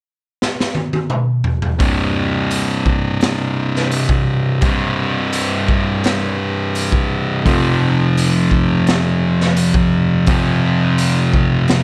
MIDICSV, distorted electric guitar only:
0, 0, Header, 1, 2, 480
1, 0, Start_track
1, 0, Tempo, 705882
1, 1229, Time_signature, 4, 2, 24, 8
1, 8046, End_track
2, 0, Start_track
2, 0, Title_t, "Distorted electric guitar"
2, 0, Program_c, 0, 30
2, 1215, Note_on_c, 0, 36, 74
2, 1221, Note_on_c, 0, 43, 98
2, 1230, Note_on_c, 0, 48, 100
2, 3127, Note_off_c, 0, 36, 0
2, 3131, Note_off_c, 0, 43, 0
2, 3135, Note_off_c, 0, 48, 0
2, 3141, Note_on_c, 0, 36, 88
2, 3149, Note_on_c, 0, 43, 94
2, 3154, Note_on_c, 0, 48, 83
2, 5051, Note_off_c, 0, 36, 0
2, 5055, Note_off_c, 0, 43, 0
2, 5057, Note_off_c, 0, 48, 0
2, 5069, Note_on_c, 0, 41, 95
2, 5074, Note_on_c, 0, 48, 89
2, 5082, Note_on_c, 0, 53, 100
2, 6975, Note_off_c, 0, 41, 0
2, 6978, Note_off_c, 0, 48, 0
2, 6981, Note_off_c, 0, 53, 0
2, 6988, Note_on_c, 0, 41, 88
2, 6997, Note_on_c, 0, 48, 89
2, 7004, Note_on_c, 0, 53, 93
2, 8046, Note_off_c, 0, 41, 0
2, 8046, Note_off_c, 0, 48, 0
2, 8046, Note_off_c, 0, 53, 0
2, 8046, End_track
0, 0, End_of_file